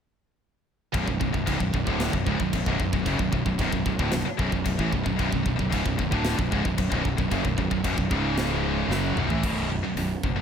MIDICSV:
0, 0, Header, 1, 7, 480
1, 0, Start_track
1, 0, Key_signature, 2, "minor"
1, 0, Tempo, 530973
1, 852, Time_signature, 4, 2, 24, 8
1, 9417, End_track
2, 0, Start_track
2, 0, Title_t, "Distorted electric guitar"
2, 0, Program_c, 0, 30
2, 844, Note_on_c, 0, 35, 94
2, 853, Note_on_c, 0, 42, 101
2, 959, Note_off_c, 0, 35, 0
2, 961, Note_off_c, 0, 42, 0
2, 970, Note_on_c, 0, 35, 68
2, 972, Note_on_c, 0, 42, 71
2, 1074, Note_off_c, 0, 35, 0
2, 1074, Note_off_c, 0, 42, 0
2, 1084, Note_on_c, 0, 42, 66
2, 1085, Note_on_c, 0, 35, 60
2, 1188, Note_off_c, 0, 35, 0
2, 1192, Note_off_c, 0, 42, 0
2, 1199, Note_on_c, 0, 35, 63
2, 1203, Note_on_c, 0, 42, 68
2, 1316, Note_off_c, 0, 35, 0
2, 1320, Note_on_c, 0, 37, 90
2, 1322, Note_off_c, 0, 42, 0
2, 1326, Note_on_c, 0, 44, 98
2, 1436, Note_off_c, 0, 37, 0
2, 1437, Note_off_c, 0, 44, 0
2, 1439, Note_on_c, 0, 35, 54
2, 1440, Note_on_c, 0, 42, 74
2, 1565, Note_off_c, 0, 35, 0
2, 1566, Note_off_c, 0, 42, 0
2, 1575, Note_on_c, 0, 35, 66
2, 1577, Note_on_c, 0, 42, 69
2, 1686, Note_off_c, 0, 35, 0
2, 1690, Note_on_c, 0, 38, 83
2, 1692, Note_off_c, 0, 42, 0
2, 1695, Note_on_c, 0, 45, 90
2, 1703, Note_on_c, 0, 50, 99
2, 1923, Note_off_c, 0, 38, 0
2, 1926, Note_off_c, 0, 45, 0
2, 1930, Note_off_c, 0, 50, 0
2, 1935, Note_on_c, 0, 35, 61
2, 1937, Note_on_c, 0, 42, 75
2, 2051, Note_off_c, 0, 35, 0
2, 2054, Note_off_c, 0, 42, 0
2, 2054, Note_on_c, 0, 37, 91
2, 2058, Note_on_c, 0, 44, 93
2, 2166, Note_off_c, 0, 37, 0
2, 2168, Note_off_c, 0, 44, 0
2, 2176, Note_on_c, 0, 35, 61
2, 2180, Note_on_c, 0, 42, 70
2, 2294, Note_off_c, 0, 35, 0
2, 2296, Note_off_c, 0, 42, 0
2, 2307, Note_on_c, 0, 35, 62
2, 2309, Note_on_c, 0, 42, 69
2, 2409, Note_off_c, 0, 35, 0
2, 2413, Note_off_c, 0, 42, 0
2, 2420, Note_on_c, 0, 35, 84
2, 2423, Note_on_c, 0, 42, 86
2, 2529, Note_off_c, 0, 35, 0
2, 2530, Note_off_c, 0, 42, 0
2, 2540, Note_on_c, 0, 35, 53
2, 2542, Note_on_c, 0, 42, 66
2, 2644, Note_off_c, 0, 35, 0
2, 2644, Note_off_c, 0, 42, 0
2, 2655, Note_on_c, 0, 35, 72
2, 2655, Note_on_c, 0, 42, 84
2, 2767, Note_off_c, 0, 42, 0
2, 2773, Note_off_c, 0, 35, 0
2, 2778, Note_on_c, 0, 42, 91
2, 2785, Note_on_c, 0, 49, 101
2, 2884, Note_off_c, 0, 42, 0
2, 2891, Note_off_c, 0, 49, 0
2, 2893, Note_on_c, 0, 35, 58
2, 2895, Note_on_c, 0, 42, 72
2, 2987, Note_off_c, 0, 35, 0
2, 2997, Note_off_c, 0, 42, 0
2, 2998, Note_on_c, 0, 35, 63
2, 3008, Note_on_c, 0, 42, 70
2, 3119, Note_off_c, 0, 35, 0
2, 3119, Note_off_c, 0, 42, 0
2, 3129, Note_on_c, 0, 35, 59
2, 3129, Note_on_c, 0, 42, 66
2, 3250, Note_off_c, 0, 35, 0
2, 3250, Note_off_c, 0, 42, 0
2, 3266, Note_on_c, 0, 35, 90
2, 3266, Note_on_c, 0, 42, 103
2, 3368, Note_off_c, 0, 35, 0
2, 3371, Note_off_c, 0, 42, 0
2, 3379, Note_on_c, 0, 35, 67
2, 3382, Note_on_c, 0, 42, 77
2, 3483, Note_off_c, 0, 35, 0
2, 3485, Note_off_c, 0, 42, 0
2, 3494, Note_on_c, 0, 35, 64
2, 3496, Note_on_c, 0, 42, 77
2, 3606, Note_off_c, 0, 35, 0
2, 3609, Note_on_c, 0, 38, 101
2, 3612, Note_off_c, 0, 42, 0
2, 3615, Note_on_c, 0, 45, 91
2, 3723, Note_off_c, 0, 38, 0
2, 3726, Note_off_c, 0, 45, 0
2, 3729, Note_on_c, 0, 35, 65
2, 3735, Note_on_c, 0, 42, 81
2, 3833, Note_off_c, 0, 35, 0
2, 3853, Note_off_c, 0, 42, 0
2, 3956, Note_on_c, 0, 35, 98
2, 3963, Note_on_c, 0, 42, 109
2, 4065, Note_off_c, 0, 35, 0
2, 4071, Note_off_c, 0, 42, 0
2, 4076, Note_on_c, 0, 35, 61
2, 4081, Note_on_c, 0, 42, 74
2, 4185, Note_off_c, 0, 35, 0
2, 4194, Note_off_c, 0, 42, 0
2, 4196, Note_on_c, 0, 35, 60
2, 4205, Note_on_c, 0, 42, 68
2, 4319, Note_off_c, 0, 35, 0
2, 4323, Note_on_c, 0, 45, 78
2, 4327, Note_off_c, 0, 42, 0
2, 4330, Note_on_c, 0, 52, 96
2, 4437, Note_off_c, 0, 45, 0
2, 4440, Note_off_c, 0, 52, 0
2, 4441, Note_on_c, 0, 35, 60
2, 4444, Note_on_c, 0, 42, 67
2, 4543, Note_off_c, 0, 35, 0
2, 4546, Note_off_c, 0, 42, 0
2, 4553, Note_on_c, 0, 35, 73
2, 4557, Note_on_c, 0, 42, 78
2, 4656, Note_off_c, 0, 35, 0
2, 4666, Note_off_c, 0, 42, 0
2, 4667, Note_on_c, 0, 35, 87
2, 4676, Note_on_c, 0, 42, 107
2, 4783, Note_off_c, 0, 35, 0
2, 4788, Note_off_c, 0, 42, 0
2, 4793, Note_on_c, 0, 35, 67
2, 4799, Note_on_c, 0, 42, 70
2, 4897, Note_off_c, 0, 42, 0
2, 4898, Note_off_c, 0, 35, 0
2, 4908, Note_on_c, 0, 35, 67
2, 4908, Note_on_c, 0, 42, 65
2, 5013, Note_off_c, 0, 35, 0
2, 5019, Note_off_c, 0, 42, 0
2, 5024, Note_on_c, 0, 35, 65
2, 5030, Note_on_c, 0, 42, 63
2, 5146, Note_off_c, 0, 35, 0
2, 5149, Note_on_c, 0, 37, 86
2, 5152, Note_off_c, 0, 42, 0
2, 5156, Note_on_c, 0, 44, 100
2, 5272, Note_off_c, 0, 37, 0
2, 5275, Note_off_c, 0, 44, 0
2, 5283, Note_on_c, 0, 35, 61
2, 5283, Note_on_c, 0, 42, 66
2, 5393, Note_off_c, 0, 35, 0
2, 5399, Note_off_c, 0, 42, 0
2, 5403, Note_on_c, 0, 35, 64
2, 5410, Note_on_c, 0, 42, 78
2, 5519, Note_off_c, 0, 35, 0
2, 5523, Note_on_c, 0, 38, 89
2, 5526, Note_off_c, 0, 42, 0
2, 5530, Note_on_c, 0, 45, 93
2, 5530, Note_on_c, 0, 50, 101
2, 5759, Note_off_c, 0, 38, 0
2, 5762, Note_off_c, 0, 45, 0
2, 5762, Note_off_c, 0, 50, 0
2, 5763, Note_on_c, 0, 35, 60
2, 5769, Note_on_c, 0, 42, 73
2, 5883, Note_off_c, 0, 35, 0
2, 5887, Note_on_c, 0, 37, 84
2, 5889, Note_off_c, 0, 42, 0
2, 5893, Note_on_c, 0, 44, 107
2, 6001, Note_off_c, 0, 37, 0
2, 6004, Note_off_c, 0, 44, 0
2, 6005, Note_on_c, 0, 35, 61
2, 6009, Note_on_c, 0, 42, 71
2, 6113, Note_off_c, 0, 35, 0
2, 6118, Note_off_c, 0, 42, 0
2, 6124, Note_on_c, 0, 35, 64
2, 6129, Note_on_c, 0, 42, 75
2, 6224, Note_off_c, 0, 35, 0
2, 6230, Note_off_c, 0, 42, 0
2, 6235, Note_on_c, 0, 35, 78
2, 6241, Note_on_c, 0, 42, 94
2, 6354, Note_off_c, 0, 35, 0
2, 6354, Note_off_c, 0, 42, 0
2, 6364, Note_on_c, 0, 42, 61
2, 6366, Note_on_c, 0, 35, 58
2, 6472, Note_off_c, 0, 35, 0
2, 6472, Note_off_c, 0, 42, 0
2, 6482, Note_on_c, 0, 35, 84
2, 6483, Note_on_c, 0, 42, 84
2, 6597, Note_off_c, 0, 42, 0
2, 6604, Note_off_c, 0, 35, 0
2, 6608, Note_on_c, 0, 42, 99
2, 6613, Note_on_c, 0, 49, 102
2, 6721, Note_off_c, 0, 42, 0
2, 6724, Note_off_c, 0, 49, 0
2, 6733, Note_on_c, 0, 35, 65
2, 6735, Note_on_c, 0, 42, 67
2, 6843, Note_off_c, 0, 35, 0
2, 6847, Note_off_c, 0, 42, 0
2, 6854, Note_on_c, 0, 35, 63
2, 6857, Note_on_c, 0, 42, 75
2, 6957, Note_off_c, 0, 35, 0
2, 6962, Note_off_c, 0, 42, 0
2, 6968, Note_on_c, 0, 35, 66
2, 6973, Note_on_c, 0, 42, 74
2, 7079, Note_off_c, 0, 35, 0
2, 7086, Note_off_c, 0, 42, 0
2, 7090, Note_on_c, 0, 35, 95
2, 7097, Note_on_c, 0, 42, 115
2, 7199, Note_off_c, 0, 42, 0
2, 7200, Note_off_c, 0, 35, 0
2, 7210, Note_on_c, 0, 35, 59
2, 7210, Note_on_c, 0, 42, 77
2, 7331, Note_off_c, 0, 35, 0
2, 7331, Note_on_c, 0, 37, 95
2, 7334, Note_off_c, 0, 42, 0
2, 7334, Note_on_c, 0, 44, 100
2, 7338, Note_on_c, 0, 49, 109
2, 8037, Note_off_c, 0, 49, 0
2, 8042, Note_off_c, 0, 37, 0
2, 8044, Note_off_c, 0, 44, 0
2, 8046, Note_on_c, 0, 42, 87
2, 8048, Note_on_c, 0, 49, 106
2, 8052, Note_on_c, 0, 54, 106
2, 8280, Note_off_c, 0, 42, 0
2, 8281, Note_off_c, 0, 49, 0
2, 8283, Note_off_c, 0, 54, 0
2, 8290, Note_on_c, 0, 35, 74
2, 8292, Note_on_c, 0, 42, 78
2, 8401, Note_off_c, 0, 35, 0
2, 8403, Note_off_c, 0, 42, 0
2, 8405, Note_on_c, 0, 45, 101
2, 8415, Note_on_c, 0, 52, 96
2, 8519, Note_off_c, 0, 45, 0
2, 8524, Note_off_c, 0, 52, 0
2, 8529, Note_on_c, 0, 35, 84
2, 8537, Note_on_c, 0, 42, 82
2, 8539, Note_on_c, 0, 47, 106
2, 8752, Note_off_c, 0, 42, 0
2, 8754, Note_off_c, 0, 35, 0
2, 8759, Note_off_c, 0, 47, 0
2, 8763, Note_on_c, 0, 42, 80
2, 8766, Note_on_c, 0, 35, 55
2, 8876, Note_off_c, 0, 42, 0
2, 8881, Note_off_c, 0, 35, 0
2, 8887, Note_on_c, 0, 42, 69
2, 8892, Note_on_c, 0, 35, 55
2, 9001, Note_off_c, 0, 35, 0
2, 9002, Note_off_c, 0, 42, 0
2, 9012, Note_on_c, 0, 35, 70
2, 9013, Note_on_c, 0, 42, 76
2, 9226, Note_off_c, 0, 35, 0
2, 9227, Note_off_c, 0, 42, 0
2, 9256, Note_on_c, 0, 35, 67
2, 9256, Note_on_c, 0, 42, 75
2, 9355, Note_off_c, 0, 42, 0
2, 9362, Note_off_c, 0, 35, 0
2, 9366, Note_on_c, 0, 42, 75
2, 9373, Note_on_c, 0, 35, 53
2, 9417, Note_off_c, 0, 35, 0
2, 9417, Note_off_c, 0, 42, 0
2, 9417, End_track
3, 0, Start_track
3, 0, Title_t, "Distorted electric guitar"
3, 0, Program_c, 1, 30
3, 4946, Note_on_c, 1, 35, 70
3, 4949, Note_on_c, 1, 42, 73
3, 5054, Note_off_c, 1, 35, 0
3, 5054, Note_off_c, 1, 42, 0
3, 5065, Note_on_c, 1, 35, 64
3, 5178, Note_off_c, 1, 35, 0
3, 9417, End_track
4, 0, Start_track
4, 0, Title_t, "Fingered electric bass"
4, 0, Program_c, 2, 33
4, 851, Note_on_c, 2, 23, 84
4, 963, Note_off_c, 2, 23, 0
4, 974, Note_on_c, 2, 23, 79
4, 1085, Note_off_c, 2, 23, 0
4, 1092, Note_on_c, 2, 23, 73
4, 1203, Note_off_c, 2, 23, 0
4, 1213, Note_on_c, 2, 23, 82
4, 1324, Note_off_c, 2, 23, 0
4, 1334, Note_on_c, 2, 25, 92
4, 1439, Note_off_c, 2, 25, 0
4, 1444, Note_on_c, 2, 23, 80
4, 1559, Note_off_c, 2, 23, 0
4, 1569, Note_on_c, 2, 23, 74
4, 1682, Note_off_c, 2, 23, 0
4, 1690, Note_on_c, 2, 26, 85
4, 1914, Note_off_c, 2, 26, 0
4, 1929, Note_on_c, 2, 23, 71
4, 2042, Note_off_c, 2, 23, 0
4, 2047, Note_on_c, 2, 25, 104
4, 2161, Note_off_c, 2, 25, 0
4, 2169, Note_on_c, 2, 23, 73
4, 2282, Note_off_c, 2, 23, 0
4, 2291, Note_on_c, 2, 23, 69
4, 2403, Note_off_c, 2, 23, 0
4, 2408, Note_on_c, 2, 23, 107
4, 2521, Note_off_c, 2, 23, 0
4, 2528, Note_on_c, 2, 23, 80
4, 2641, Note_off_c, 2, 23, 0
4, 2645, Note_on_c, 2, 23, 88
4, 2760, Note_off_c, 2, 23, 0
4, 2769, Note_on_c, 2, 30, 83
4, 2879, Note_off_c, 2, 30, 0
4, 2884, Note_on_c, 2, 23, 83
4, 2999, Note_off_c, 2, 23, 0
4, 3005, Note_on_c, 2, 23, 81
4, 3120, Note_off_c, 2, 23, 0
4, 3126, Note_on_c, 2, 23, 75
4, 3237, Note_off_c, 2, 23, 0
4, 3242, Note_on_c, 2, 23, 103
4, 3358, Note_off_c, 2, 23, 0
4, 3371, Note_on_c, 2, 23, 80
4, 3478, Note_off_c, 2, 23, 0
4, 3484, Note_on_c, 2, 23, 79
4, 3599, Note_off_c, 2, 23, 0
4, 3606, Note_on_c, 2, 26, 86
4, 3720, Note_off_c, 2, 26, 0
4, 3732, Note_on_c, 2, 23, 80
4, 3843, Note_off_c, 2, 23, 0
4, 3969, Note_on_c, 2, 23, 90
4, 4081, Note_off_c, 2, 23, 0
4, 4087, Note_on_c, 2, 23, 86
4, 4200, Note_off_c, 2, 23, 0
4, 4206, Note_on_c, 2, 23, 69
4, 4320, Note_off_c, 2, 23, 0
4, 4330, Note_on_c, 2, 33, 106
4, 4442, Note_off_c, 2, 33, 0
4, 4452, Note_on_c, 2, 23, 82
4, 4563, Note_off_c, 2, 23, 0
4, 4579, Note_on_c, 2, 23, 84
4, 4686, Note_off_c, 2, 23, 0
4, 4692, Note_on_c, 2, 23, 87
4, 4803, Note_off_c, 2, 23, 0
4, 4815, Note_on_c, 2, 23, 89
4, 4924, Note_off_c, 2, 23, 0
4, 4931, Note_on_c, 2, 23, 73
4, 5042, Note_off_c, 2, 23, 0
4, 5060, Note_on_c, 2, 23, 71
4, 5167, Note_off_c, 2, 23, 0
4, 5179, Note_on_c, 2, 25, 94
4, 5287, Note_off_c, 2, 25, 0
4, 5294, Note_on_c, 2, 23, 77
4, 5404, Note_off_c, 2, 23, 0
4, 5415, Note_on_c, 2, 23, 75
4, 5524, Note_off_c, 2, 23, 0
4, 5533, Note_on_c, 2, 26, 79
4, 5755, Note_off_c, 2, 26, 0
4, 5771, Note_on_c, 2, 23, 84
4, 5882, Note_off_c, 2, 23, 0
4, 5896, Note_on_c, 2, 25, 97
4, 6005, Note_off_c, 2, 25, 0
4, 6013, Note_on_c, 2, 23, 84
4, 6123, Note_off_c, 2, 23, 0
4, 6130, Note_on_c, 2, 23, 68
4, 6241, Note_off_c, 2, 23, 0
4, 6249, Note_on_c, 2, 23, 103
4, 6361, Note_off_c, 2, 23, 0
4, 6372, Note_on_c, 2, 23, 80
4, 6482, Note_off_c, 2, 23, 0
4, 6491, Note_on_c, 2, 23, 90
4, 6601, Note_off_c, 2, 23, 0
4, 6609, Note_on_c, 2, 30, 86
4, 6721, Note_off_c, 2, 30, 0
4, 6733, Note_on_c, 2, 23, 86
4, 6843, Note_off_c, 2, 23, 0
4, 6852, Note_on_c, 2, 23, 83
4, 6962, Note_off_c, 2, 23, 0
4, 6974, Note_on_c, 2, 23, 77
4, 7083, Note_off_c, 2, 23, 0
4, 7092, Note_on_c, 2, 23, 97
4, 7202, Note_off_c, 2, 23, 0
4, 7214, Note_on_c, 2, 23, 74
4, 7323, Note_off_c, 2, 23, 0
4, 7331, Note_on_c, 2, 25, 89
4, 8013, Note_off_c, 2, 25, 0
4, 8027, Note_on_c, 2, 30, 80
4, 8260, Note_off_c, 2, 30, 0
4, 8276, Note_on_c, 2, 23, 86
4, 8389, Note_off_c, 2, 23, 0
4, 8395, Note_on_c, 2, 33, 102
4, 8513, Note_off_c, 2, 33, 0
4, 8525, Note_on_c, 2, 23, 75
4, 8839, Note_off_c, 2, 23, 0
4, 9002, Note_on_c, 2, 23, 88
4, 9160, Note_off_c, 2, 23, 0
4, 9250, Note_on_c, 2, 30, 77
4, 9406, Note_off_c, 2, 30, 0
4, 9417, End_track
5, 0, Start_track
5, 0, Title_t, "Muted distorted electric guitar strokes"
5, 3844, Note_on_c, 9, 29, 61
5, 3934, Note_off_c, 9, 29, 0
5, 9417, End_track
6, 0, Start_track
6, 0, Title_t, "Muted fingered electric bass strokes"
6, 3859, Note_on_c, 9, 29, 37
6, 3949, Note_off_c, 9, 29, 0
6, 9417, End_track
7, 0, Start_track
7, 0, Title_t, "Drums"
7, 852, Note_on_c, 9, 36, 98
7, 855, Note_on_c, 9, 52, 54
7, 942, Note_off_c, 9, 36, 0
7, 945, Note_off_c, 9, 52, 0
7, 972, Note_on_c, 9, 36, 74
7, 1063, Note_off_c, 9, 36, 0
7, 1092, Note_on_c, 9, 36, 90
7, 1183, Note_off_c, 9, 36, 0
7, 1212, Note_on_c, 9, 36, 78
7, 1303, Note_off_c, 9, 36, 0
7, 1331, Note_on_c, 9, 36, 101
7, 1335, Note_on_c, 9, 52, 60
7, 1421, Note_off_c, 9, 36, 0
7, 1426, Note_off_c, 9, 52, 0
7, 1450, Note_on_c, 9, 36, 83
7, 1540, Note_off_c, 9, 36, 0
7, 1570, Note_on_c, 9, 36, 86
7, 1661, Note_off_c, 9, 36, 0
7, 1689, Note_on_c, 9, 36, 83
7, 1780, Note_off_c, 9, 36, 0
7, 1807, Note_on_c, 9, 52, 64
7, 1809, Note_on_c, 9, 38, 98
7, 1897, Note_off_c, 9, 52, 0
7, 1899, Note_off_c, 9, 38, 0
7, 1928, Note_on_c, 9, 36, 85
7, 2018, Note_off_c, 9, 36, 0
7, 2048, Note_on_c, 9, 36, 72
7, 2138, Note_off_c, 9, 36, 0
7, 2168, Note_on_c, 9, 36, 75
7, 2258, Note_off_c, 9, 36, 0
7, 2288, Note_on_c, 9, 36, 92
7, 2290, Note_on_c, 9, 52, 63
7, 2378, Note_off_c, 9, 36, 0
7, 2380, Note_off_c, 9, 52, 0
7, 2408, Note_on_c, 9, 36, 82
7, 2498, Note_off_c, 9, 36, 0
7, 2528, Note_on_c, 9, 36, 75
7, 2619, Note_off_c, 9, 36, 0
7, 2648, Note_on_c, 9, 36, 97
7, 2739, Note_off_c, 9, 36, 0
7, 2767, Note_on_c, 9, 36, 84
7, 2767, Note_on_c, 9, 52, 53
7, 2857, Note_off_c, 9, 36, 0
7, 2857, Note_off_c, 9, 52, 0
7, 2886, Note_on_c, 9, 36, 86
7, 2976, Note_off_c, 9, 36, 0
7, 3007, Note_on_c, 9, 36, 84
7, 3097, Note_off_c, 9, 36, 0
7, 3127, Note_on_c, 9, 36, 79
7, 3217, Note_off_c, 9, 36, 0
7, 3242, Note_on_c, 9, 52, 56
7, 3247, Note_on_c, 9, 36, 100
7, 3332, Note_off_c, 9, 52, 0
7, 3337, Note_off_c, 9, 36, 0
7, 3367, Note_on_c, 9, 36, 83
7, 3458, Note_off_c, 9, 36, 0
7, 3488, Note_on_c, 9, 36, 91
7, 3578, Note_off_c, 9, 36, 0
7, 3609, Note_on_c, 9, 36, 92
7, 3699, Note_off_c, 9, 36, 0
7, 3721, Note_on_c, 9, 52, 61
7, 3723, Note_on_c, 9, 38, 102
7, 3811, Note_off_c, 9, 52, 0
7, 3813, Note_off_c, 9, 38, 0
7, 3970, Note_on_c, 9, 36, 92
7, 4060, Note_off_c, 9, 36, 0
7, 4089, Note_on_c, 9, 36, 76
7, 4179, Note_off_c, 9, 36, 0
7, 4208, Note_on_c, 9, 52, 59
7, 4210, Note_on_c, 9, 36, 95
7, 4299, Note_off_c, 9, 52, 0
7, 4301, Note_off_c, 9, 36, 0
7, 4330, Note_on_c, 9, 36, 80
7, 4420, Note_off_c, 9, 36, 0
7, 4452, Note_on_c, 9, 36, 70
7, 4543, Note_off_c, 9, 36, 0
7, 4573, Note_on_c, 9, 36, 97
7, 4664, Note_off_c, 9, 36, 0
7, 4691, Note_on_c, 9, 52, 45
7, 4694, Note_on_c, 9, 36, 88
7, 4782, Note_off_c, 9, 52, 0
7, 4784, Note_off_c, 9, 36, 0
7, 4814, Note_on_c, 9, 36, 77
7, 4904, Note_off_c, 9, 36, 0
7, 4934, Note_on_c, 9, 36, 91
7, 5024, Note_off_c, 9, 36, 0
7, 5055, Note_on_c, 9, 36, 73
7, 5145, Note_off_c, 9, 36, 0
7, 5175, Note_on_c, 9, 36, 100
7, 5177, Note_on_c, 9, 52, 55
7, 5266, Note_off_c, 9, 36, 0
7, 5268, Note_off_c, 9, 52, 0
7, 5294, Note_on_c, 9, 36, 84
7, 5385, Note_off_c, 9, 36, 0
7, 5413, Note_on_c, 9, 36, 83
7, 5504, Note_off_c, 9, 36, 0
7, 5533, Note_on_c, 9, 36, 85
7, 5623, Note_off_c, 9, 36, 0
7, 5644, Note_on_c, 9, 52, 57
7, 5646, Note_on_c, 9, 38, 106
7, 5735, Note_off_c, 9, 52, 0
7, 5737, Note_off_c, 9, 38, 0
7, 5774, Note_on_c, 9, 36, 90
7, 5864, Note_off_c, 9, 36, 0
7, 5894, Note_on_c, 9, 36, 72
7, 5985, Note_off_c, 9, 36, 0
7, 6013, Note_on_c, 9, 36, 76
7, 6103, Note_off_c, 9, 36, 0
7, 6128, Note_on_c, 9, 52, 71
7, 6132, Note_on_c, 9, 36, 94
7, 6218, Note_off_c, 9, 52, 0
7, 6223, Note_off_c, 9, 36, 0
7, 6254, Note_on_c, 9, 36, 88
7, 6344, Note_off_c, 9, 36, 0
7, 6374, Note_on_c, 9, 36, 76
7, 6464, Note_off_c, 9, 36, 0
7, 6493, Note_on_c, 9, 36, 90
7, 6584, Note_off_c, 9, 36, 0
7, 6613, Note_on_c, 9, 36, 85
7, 6614, Note_on_c, 9, 52, 51
7, 6704, Note_off_c, 9, 36, 0
7, 6704, Note_off_c, 9, 52, 0
7, 6732, Note_on_c, 9, 36, 85
7, 6823, Note_off_c, 9, 36, 0
7, 6851, Note_on_c, 9, 36, 82
7, 6941, Note_off_c, 9, 36, 0
7, 6971, Note_on_c, 9, 36, 72
7, 7062, Note_off_c, 9, 36, 0
7, 7090, Note_on_c, 9, 36, 93
7, 7091, Note_on_c, 9, 52, 66
7, 7181, Note_off_c, 9, 36, 0
7, 7181, Note_off_c, 9, 52, 0
7, 7212, Note_on_c, 9, 36, 91
7, 7302, Note_off_c, 9, 36, 0
7, 7331, Note_on_c, 9, 36, 88
7, 7422, Note_off_c, 9, 36, 0
7, 7570, Note_on_c, 9, 52, 55
7, 7572, Note_on_c, 9, 38, 108
7, 7660, Note_off_c, 9, 52, 0
7, 7662, Note_off_c, 9, 38, 0
7, 8057, Note_on_c, 9, 38, 64
7, 8147, Note_off_c, 9, 38, 0
7, 8290, Note_on_c, 9, 45, 92
7, 8380, Note_off_c, 9, 45, 0
7, 8409, Note_on_c, 9, 43, 99
7, 8500, Note_off_c, 9, 43, 0
7, 8528, Note_on_c, 9, 36, 86
7, 8529, Note_on_c, 9, 49, 87
7, 8619, Note_off_c, 9, 36, 0
7, 8619, Note_off_c, 9, 49, 0
7, 9013, Note_on_c, 9, 46, 56
7, 9104, Note_off_c, 9, 46, 0
7, 9252, Note_on_c, 9, 36, 80
7, 9343, Note_off_c, 9, 36, 0
7, 9417, End_track
0, 0, End_of_file